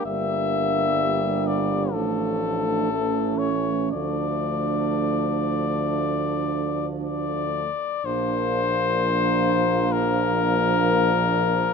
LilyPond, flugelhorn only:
\new Staff \with { instrumentName = "Flugelhorn" } { \time 4/4 \key bes \lydian \tempo 4 = 62 e''4. d''8 a'4. cis''8 | d''2. d''4 | c''2 bes'2 | }